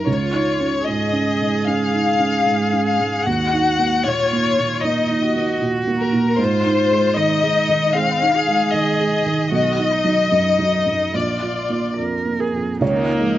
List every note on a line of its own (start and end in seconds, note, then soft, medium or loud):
0.00 0.10 F#2 soft
0.06 1.63 C#2 soft
0.06 0.84 F4 medium
0.06 0.88 C#5 medium
0.33 0.76 D#4 soft
0.60 1.03 C#4 soft
0.85 1.31 G#2 soft
0.85 3.27 G#4 medium
0.85 1.66 D#5 medium
1.13 1.56 C#4 soft
1.41 1.84 G#2 soft
1.67 2.10 C#4 soft
1.67 2.84 F5 medium
1.94 2.36 D#4 soft
2.19 2.62 C#4 soft
2.46 2.89 G#2 soft
2.73 3.16 C#4 soft
2.85 3.25 F5 medium
3.00 3.27 G#2 soft
3.25 4.80 D#2 soft
3.25 4.05 F#4 medium
3.25 4.05 F#5 medium
3.53 3.95 D#4 soft
3.79 4.21 A#3 soft
4.04 4.47 A#2 soft
4.04 4.83 F4 medium
4.04 4.84 C#5 medium
4.33 4.74 A#3 soft
4.59 5.00 A#2 soft
4.81 5.25 A#3 soft
4.81 5.24 D#4 medium
4.81 5.61 D#5 medium
5.10 5.51 D#4 soft
5.23 6.38 F#4 medium
5.36 5.77 A#3 soft
5.61 6.02 A#2 soft
5.87 6.28 A#3 soft
5.98 6.35 A#4 medium
6.12 6.39 A#2 soft
6.38 7.91 G#2 medium
6.38 7.18 F4 medium
6.38 7.17 C5 medium
6.65 7.07 D#4 soft
6.91 7.33 G#3 soft
7.17 7.58 D#3 soft
7.17 7.96 D#4 medium
7.17 7.95 D#5 medium
7.43 7.84 G#3 soft
7.69 8.10 D#3 soft
7.94 8.37 G#3 soft
7.94 8.36 C4 medium
7.94 8.73 F5 medium
8.21 8.63 D#4 soft
8.35 9.51 G#4 medium
8.47 8.89 G#3 soft
8.73 9.15 D#3 soft
8.73 9.52 D#5 medium
9.00 9.42 G#3 soft
9.26 9.52 D#3 soft
9.52 11.10 B1 medium
9.52 9.94 F#4 medium
9.52 11.11 D#5 medium
9.78 10.21 D#4 soft
9.92 10.32 D#4 soft
10.04 10.48 F#3 soft
10.32 10.75 F#2 soft
10.32 11.15 D#4 soft
10.59 11.03 F#3 soft
10.86 11.14 F#2 soft
11.14 12.77 A#1 soft
11.14 11.89 F4 soft
11.14 11.98 D5 medium
11.42 11.86 F4 soft
11.70 12.14 A#3 soft
11.98 12.43 F2 soft
11.98 12.41 A#4 soft
12.25 12.70 A#3 soft
12.39 12.81 G#4 soft
12.39 12.78 A#4 soft
12.53 12.81 F2 soft
12.80 13.38 C#2 soft
12.80 13.19 D#3 soft
12.80 13.38 G#3 soft
12.80 13.38 A#3 soft
12.80 13.38 D#4 soft
12.80 13.38 C#5 medium
12.80 13.38 D#5 soft
13.20 13.38 F3 soft
13.20 13.38 G#3 soft